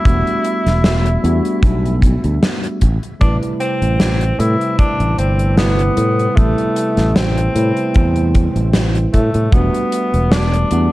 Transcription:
0.00 0.04 G3 medium
0.00 1.19 G3 medium
0.00 0.05 A3 medium
0.00 0.05 B3 medium
0.00 0.06 D4 medium
0.00 2.03 E4 loud
0.00 0.07 F#4 medium
0.05 0.21 E1 medium
0.05 1.19 A3 medium
0.05 1.19 B3 medium
0.05 1.20 D4 medium
0.05 1.20 F#4 medium
0.05 kick loud
0.05 closed hi-hat medium
0.27 closed hi-hat soft
0.44 closed hi-hat medium
0.66 1.16 E1 medium
0.66 snare soft
0.66 closed hi-hat medium
0.84 snare loud
0.84 closed hi-hat medium
1.06 closed hi-hat medium
1.22 1.39 E2 loud
1.22 2.79 G3 medium
1.22 2.79 A3 medium
1.22 2.80 B3 medium
1.22 2.80 D4 medium
1.22 2.80 F#4 loud
1.22 closed hi-hat medium
1.45 closed hi-hat medium
1.63 2.15 B1 loud
1.63 kick loud
1.63 closed hi-hat medium
1.85 closed hi-hat soft
2.02 kick medium
2.02 closed hi-hat medium
2.24 2.37 D2 medium
2.24 closed hi-hat soft
2.43 snare loud
2.43 closed hi-hat medium
2.63 closed hi-hat medium
2.81 2.97 A1 loud
2.81 kick medium
2.81 closed hi-hat loud
3.03 closed hi-hat soft
3.20 3.37 A1 loud
3.20 4.34 C3 medium
3.20 4.35 G3 medium
3.20 4.35 A3 medium
3.20 3.37 D4 loud
3.20 4.36 E4 loud
3.20 4.36 B4 medium
3.20 kick loud
3.20 closed hi-hat medium
3.43 closed hi-hat medium
3.60 4.41 C4 loud
3.60 closed hi-hat medium
3.82 4.32 A1 medium
3.82 closed hi-hat medium
4.00 snare loud
4.00 closed hi-hat medium
4.21 closed hi-hat medium
4.38 4.55 A2 medium
4.38 5.53 C3 medium
4.38 5.53 G3 medium
4.38 5.54 A3 medium
4.38 4.78 E4 loud
4.38 5.54 E4 medium
4.38 5.54 B4 medium
4.38 closed hi-hat loud
4.61 closed hi-hat medium
4.79 5.16 D4 loud
4.79 muted fingered electric bass stroke soft
4.79 kick loud
4.79 closed hi-hat medium
5.00 5.13 A1 medium
5.00 closed hi-hat medium
5.18 5.89 G1 medium
5.18 5.55 C4 medium
5.18 closed hi-hat loud
5.39 closed hi-hat soft
5.57 6.32 C3 medium
5.57 6.32 G3 medium
5.57 6.32 A3 medium
5.57 6.38 B3 loud
5.57 6.33 B3 medium
5.57 6.33 E4 medium
5.57 snare loud
5.57 closed hi-hat medium
5.79 closed hi-hat medium
5.97 6.27 A2 medium
5.97 closed hi-hat medium
6.19 closed hi-hat soft
6.35 6.53 A1 loud
6.35 7.50 C3 medium
6.35 7.51 G3 medium
6.35 7.17 A3 medium
6.35 7.51 A3 medium
6.35 7.52 E4 medium
6.35 7.51 B4 medium
6.35 kick loud
6.35 closed hi-hat medium
6.58 closed hi-hat soft
6.76 closed hi-hat loud
6.97 7.47 A1 medium
6.97 snare soft
6.97 closed hi-hat medium
7.16 8.74 C4 loud
7.16 snare loud
7.16 closed hi-hat medium
7.37 closed hi-hat medium
7.54 7.71 A2 medium
7.54 9.48 C3 medium
7.54 9.48 G3 medium
7.54 9.48 A3 medium
7.54 9.49 E4 loud
7.54 9.49 B4 medium
7.54 closed hi-hat loud
7.77 closed hi-hat medium
7.94 8.47 E2 loud
7.94 kick loud
7.94 closed hi-hat medium
8.16 closed hi-hat medium
8.35 kick loud
8.35 closed hi-hat medium
8.56 9.05 A1 medium
8.56 closed hi-hat medium
8.73 snare loud
8.73 closed hi-hat medium
8.95 closed hi-hat medium
9.13 9.29 A2 medium
9.13 9.55 A3 medium
9.13 kick medium
9.13 closed hi-hat loud
9.34 9.48 A2 medium
9.34 closed hi-hat medium
9.51 9.68 E1 loud
9.51 10.66 G3 medium
9.51 10.66 A3 medium
9.51 10.67 B3 medium
9.51 10.34 B3 loud
9.51 10.67 D4 medium
9.51 10.67 F#4 loud
9.51 kick loud
9.51 closed hi-hat medium
9.74 closed hi-hat medium
9.92 closed hi-hat loud
10.14 10.63 E1 medium
10.14 closed hi-hat medium
10.32 10.92 D4 loud
10.32 snare loud
10.32 closed hi-hat medium
10.54 closed hi-hat medium
10.70 10.87 E2 medium
10.70 10.92 G3 medium
10.70 10.92 A3 medium
10.70 10.92 B3 medium
10.70 10.92 D4 medium
10.70 10.92 F#5 medium
10.70 closed hi-hat loud

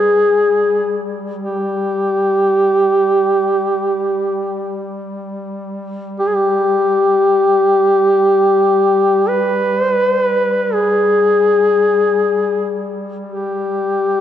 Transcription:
0.00 14.21 G3 soft
0.00 1.09 G#4 medium
1.43 4.93 G4 medium
6.19 6.28 G4 medium
6.27 6.37 G#4 medium
6.36 9.30 G4 medium
9.28 10.75 B4 medium
10.73 12.91 G#4 medium
13.25 14.21 G4 medium

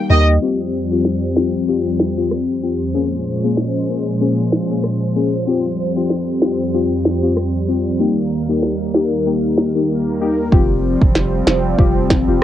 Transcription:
0.00 0.39 D#3 medium
0.00 0.38 G3 medium
0.00 0.39 A#3 medium
0.10 0.38 D#2 medium
0.10 0.39 A#3 medium
0.10 0.40 D#4 medium
0.10 0.40 G4 medium
0.10 0.22 D#5 medium
0.41 2.92 F2 medium
0.41 2.92 F3 medium
0.41 2.92 G3 medium
0.41 2.92 C4 medium
0.41 0.59 C4 medium
0.41 0.59 F4 medium
0.41 0.59 G4 loud
0.41 7.95 C5 medium
0.91 1.04 C4 medium
0.91 1.04 F4 medium
0.91 1.05 G4 medium
1.05 snare medium
1.36 1.53 C4 medium
1.36 1.54 F4 medium
1.36 1.54 G4 medium
1.36 snare loud
1.68 2.13 C4 medium
1.68 2.13 F4 medium
1.68 2.13 G4 loud
2.00 snare loud
2.17 2.30 C4 medium
2.17 2.31 F4 medium
2.17 2.31 G4 medium
2.31 cross-stick medium
2.63 2.80 C4 medium
2.63 2.80 F4 medium
2.63 2.80 G4 medium
2.94 5.44 A#2 medium
2.94 7.96 F3 medium
2.94 5.44 G#3 medium
2.94 3.11 A#3 medium
2.94 5.44 C#4 medium
2.94 3.11 C#4 medium
2.94 3.11 G#4 loud
3.44 3.57 A#3 medium
3.44 3.57 C#4 medium
3.44 3.57 G#4 medium
3.57 snare medium
3.89 4.06 A#3 medium
3.89 4.06 C#4 medium
3.89 4.06 G#4 medium
4.21 4.66 A#3 medium
4.21 4.66 C#4 medium
4.21 4.66 G#4 loud
4.52 snare loud
4.70 4.83 A#3 medium
4.70 4.83 C#4 medium
4.70 4.84 G#4 medium
4.84 cross-stick medium
5.16 5.32 A#3 medium
5.16 5.33 C#4 medium
5.16 5.33 G#4 medium
5.47 7.97 F2 medium
5.47 10.48 G3 medium
5.47 5.64 C4 medium
5.47 7.97 C4 medium
5.47 5.64 F4 medium
5.47 5.64 G4 loud
5.96 6.09 C4 medium
5.96 6.10 F4 medium
5.96 6.10 G4 medium
6.10 snare medium
6.41 6.59 C4 medium
6.41 6.59 F4 medium
6.41 6.59 G4 medium
6.41 snare loud
6.73 7.18 C4 loud
6.73 7.18 F4 medium
6.73 7.19 G4 loud
7.05 snare loud
7.22 7.36 C4 medium
7.22 7.36 F4 medium
7.22 7.36 G4 medium
7.37 cross-stick loud
7.68 7.85 C4 medium
7.68 7.85 F4 medium
7.68 7.85 G4 medium
7.99 10.50 D#2 medium
7.99 10.49 D#3 medium
7.99 8.16 A#3 medium
7.99 10.49 A#3 medium
7.99 8.16 D#4 medium
7.99 8.17 G4 loud
7.99 10.49 A#4 medium
8.48 8.62 A#3 medium
8.48 8.62 D#4 medium
8.48 8.62 G4 medium
8.63 snare medium
8.94 9.11 A#3 medium
8.94 9.11 D#4 medium
8.94 9.12 G4 medium
8.94 snare loud
9.26 9.71 A#3 medium
9.26 9.71 D#4 medium
9.26 9.71 G4 loud
9.58 snare loud
9.75 9.88 A#3 medium
9.75 9.89 D#4 medium
9.75 9.89 G4 medium
10.21 10.38 A#3 medium
10.21 10.38 D#4 medium
10.21 10.38 G4 medium
10.52 10.96 F1 loud
10.52 12.44 F3 medium
10.52 12.44 G3 medium
10.52 12.44 C4 medium
10.52 11.11 C4 medium
10.52 11.11 F4 medium
10.52 11.11 G4 loud
10.52 kick loud
11.02 11.42 F1 medium
11.02 kick medium
11.15 snare medium
11.47 11.75 F1 loud
11.47 snare loud
11.78 12.22 F1 loud
11.78 11.95 C4 medium
11.78 11.96 F4 medium
11.78 11.96 G4 loud
11.78 kick medium
12.10 kick medium
12.10 snare loud
12.28 12.40 F1 medium
12.28 12.41 C4 medium
12.28 12.41 F4 medium
12.28 12.41 G4 medium

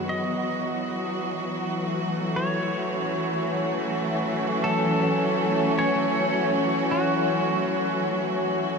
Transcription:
0.00 0.10 F#2 medium
0.00 0.11 D#3 medium
0.00 8.79 F#3 medium
0.00 0.11 G#3 medium
0.00 2.23 B3 medium
0.00 8.79 F#4 medium
0.09 8.79 E3 medium
0.09 2.43 D#5 medium
1.80 8.79 A3 medium
2.36 4.02 C#5 medium
2.92 8.79 C#4 medium
4.64 5.80 A4 medium
5.79 6.94 C#5 medium
6.91 8.00 F#4 medium

